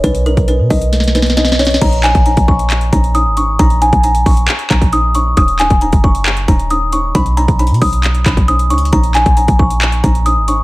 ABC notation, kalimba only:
X:1
M:4/4
L:1/8
Q:1/4=135
K:Bbphr
V:1 name="Kalimba"
=B _B =B ^d2 B d _d | b a b d'2 b e' d' | b a b d'2 b e' d' | e' a b d'2 b e' d' |
=b _b =b ^d'2 b d' ^c' | b a b d'2 b e' d' |]